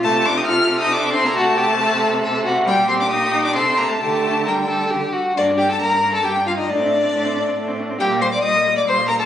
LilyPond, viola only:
\new Staff \with { instrumentName = "Viola" } { \time 3/4 \key g \minor \tempo 4 = 137 a8 d'16 ees'16 f'8. ees'16 d'8 c'16 bes16 | a2~ a8 r8 | g8 c'16 d'16 ees'8. d'16 c'8 bes16 a16 | a4 g4 r4 |
bes16 d'16 bes16 d'16 bes16 d'16 bes16 d'16 bes16 d'16 bes16 d'16 | d'16 c'16 d'16 c'16 d'16 c'16 d'16 c'16 d'16 c'16 d'16 c'16 | g16 bes16 g16 bes16 g16 bes16 g16 bes16 g16 bes16 g16 bes16 | }